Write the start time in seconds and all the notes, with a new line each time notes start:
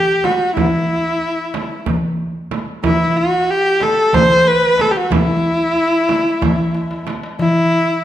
Already playing: G4
0.24 F#4, darbuka tek, frame drum
0.57 E4, darbuka dum, frame drum
1.54 darbuka tek, frame drum
1.86 frame drum, darbuka dum
2.51 darbuka tek, frame drum
2.83 E4, darbuka dum, frame drum
3.17 F#4
3.50 G4
3.80 A4, darbuka tek, frame drum
4.13 C5, darbuka dum, frame drum
4.47 B4
4.78 A4, darbuka tek, frame drum
4.91 G4
4.97 F#4
5.10 E4, darbuka dum, frame drum
6.09 darbuka tek, frame drum
6.42 darbuka dum, frame drum
6.75 darbuka tek
6.91 darbuka ka
7.07 darbuka tek, frame drum
7.23 darbuka ka
7.39 E4, darbuka dum